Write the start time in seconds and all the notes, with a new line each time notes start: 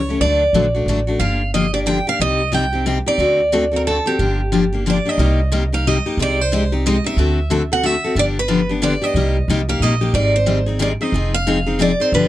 Already playing: C#2 C#5
0.09 A3 C#4 G4
0.20 D2 D3 F#3 A3 D4 F#4 D5
0.53 A#1 D3 F#3 A3 D4 F#4
0.75 A3 D4 F#4
0.86 A1 D3 F#3 A3 D4 F#4
1.07 A3 D4 F#4
1.19 G1 D3 F3 A#3 D4 G4 F5
1.54 D3 F3 A#3 D4 G4 D#5
1.73 A#3 D4 G4 D5
1.86 D3 F3 A#3 D4 G4 G5
2.07 A#3 D4 G4 F5
2.20 C2 C3 G3 C4 D#4 G4 D#5
2.52 C3 G3 C4 D#4 G4 G5
2.73 C4 D#4 G4
2.86 C3 G3 C4 D#4 G4
3.06 C4 D#4 G4 D5
3.18 D2 D3 A3 C4 F#4 A4
3.52 D3 A3 C4 F#4 A4
3.71 C4 F#4 A4
3.76 A#4
3.87 D3 A3 C4 F#4 A4
4.06 C4 F#4 G4 A4
4.19 G1 D3 F3 A#3 D4 G4
4.52 D3 F3 A#3 D4 G4
4.72 A#3 D4 G4
4.86 D3 F3 A#3 D4 G4 D5
5.05 A#3 D4 G4 D#5
5.18 C2 C3 G3 A#3 D#4 G4
5.52 C3 G3 A#3 D#4 G4
5.72 A#3 D#4 G4 F5
5.87 C3 G3 A#3 D#4 G4 D#5
6.06 A#3 D#4 G4
6.17 C2 C3 G#3 C4 D#4 G4
6.22 D5
6.41 C5
6.52 C3 G#3 C4 D#4 G4
6.72 C4 D#4 G4
6.86 C3 G#3 C4 D#4 G4 D#5
7.04 C4 D#4 G4 E5
7.17 D2 D3 A3 C4 F#4 A4
7.50 D3 A3 C4 F#4 A4
7.72 C4 F#4 A4 F#5
7.83 D3 A3 C4 F#4 A4 E5
8.04 C4 F#4 A4
8.15 G1 D3 F3 B3 D4 G4 D5
8.39 B4
8.48 D3 F3 B3 D4 G4
8.69 B3 D4 G4
8.82 D3 F3 B3 D4 G4 D5
9.02 B3 D4 G4 D#5
9.14 C2 C3 G3 A#3 D#4 G4
9.48 C2 C3 G3 A#3 D#4 G4
9.69 A#3 D#4 G4 F5
9.80 A#1 C3 G3 A#3 D#4 D#5
9.84 G4
10.01 A#3 D#4 G4
10.14 G#1 D#3 G3 C4 D#4 G#4 D5
10.36 C5
10.46 D#3 G3 C4 D#4 G#4
10.66 C4 D#4 G#4
10.79 D#3 G3 C4 D#4 G#4 D5
11.01 C4 D#4 G#4 D#5
11.12 F1 F3 C4 D#4 G#4
11.34 F5
11.47 F3 C4 D#4 G#4
11.66 C4 D#4 G#4
11.79 F3 C4 D#4 G#4 D5
12.00 C4 D#4 G#4 C5
12.12 G1 D3 F3 B3 D4 G4 B4